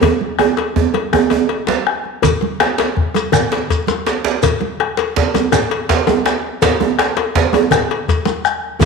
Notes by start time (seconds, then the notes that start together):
0.01 bombo low, cowbell, high conga, djembe tone, djembe bass, low conga
0.21 high conga
0.39 bombo rim, cowbell, djembe tone
0.57 bombo rim, cowbell, djembe slap
0.76 bombo low, djembe tone, high conga
0.94 bombo rim, cowbell, djembe slap, djembe tone, high conga
1.13 bombo rim, djembe slap, djembe tone, djembe bass, low conga
1.30 cowbell, djembe tone
1.49 bombo rim, cowbell
1.67 djembe slap, djembe tone, high conga
1.87 bombo rim
2.04 djembe slap, high conga
2.22 bombo low, cowbell, djembe bass, low conga, shekere
2.41 djembe slap, djembe tone, high conga
2.60 bombo rim, cowbell, djembe slap
2.78 cowbell, djembe slap, high conga
2.97 bombo rim, bombo low, high conga
3.14 bombo rim, cowbell, djembe slap, djembe tone, high conga, shekere
3.32 bombo rim, djembe slap, djembe bass, low conga, shekere
3.52 cowbell, djembe slap
3.70 bombo low, cowbell, shekere
3.87 djembe slap, high conga, djembe tone, shekere
4.06 cowbell, djembe slap, shekere
4.24 djembe slap
4.43 bombo low, cowbell, djembe bass, low conga, shekere
4.61 djembe slap, djembe tone, high conga
4.80 bombo rim, cowbell
4.97 cowbell, djembe slap, high conga
5.16 bombo rim, bombo low, djembe slap, high conga
5.34 cowbell, djembe slap, djembe tone, high conga, shekere
5.52 bombo rim, djembe slap, djembe bass, low conga, shekere
5.71 cowbell
5.89 bombo low, cowbell, djembe slap, shekere
6.07 djembe slap, djembe tone, high conga, shekere
6.25 bombo rim, cowbell, djembe slap, shekere
6.62 bombo low, cowbell, djembe slap, djembe bass, low conga, shekere
6.80 djembe slap, djembe tone, high conga
6.99 bombo rim, cowbell, djembe slap
7.17 cowbell, djembe slap, high conga
7.35 bombo rim, bombo low, djembe slap, high conga
7.53 bombo rim, cowbell, djembe slap, high conga, djembe tone
7.71 bombo rim, djembe slap, low conga, djembe bass, shekere
7.91 cowbell
8.08 bombo low, cowbell, shekere
8.25 djembe slap, djembe tone, high conga, shekere
8.44 bombo rim, djembe slap, shekere
8.80 bombo low, djembe slap, djembe tone, djembe bass, low conga, shekere